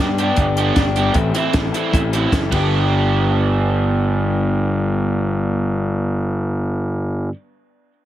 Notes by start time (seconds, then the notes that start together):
0.00 G2 G3 B3 D4 G4
0.18 G3 B3 D4 G4, closed hi-hat
0.36 G1 G2 D3 G3 B3 D4 G4, kick, closed hi-hat
0.56 G3 B3 D4 G4, closed hi-hat
0.75 G1 G3 B3 D4 G4, kick, snare, closed hi-hat
0.96 B3 D4 G4, closed hi-hat
1.14 A1 A2 E3 C4 E4 A4, kick, closed hi-hat
1.33 E3 C4 E4 A4, closed hi-hat
1.53 A1 E3 C4 E4 A4, kick, snare, closed hi-hat
1.73 E3 C4 E4 A4, closed hi-hat
1.92 A1 A2 E3 C4 E4 A4, kick, closed hi-hat
2.11 E3 C4 E4 A4, closed hi-hat
2.31 F#1 E3 C4 E4 A4, kick, snare, closed hi-hat
2.50 G1 G2 D3 G3 B3 D4 G4, kick, ride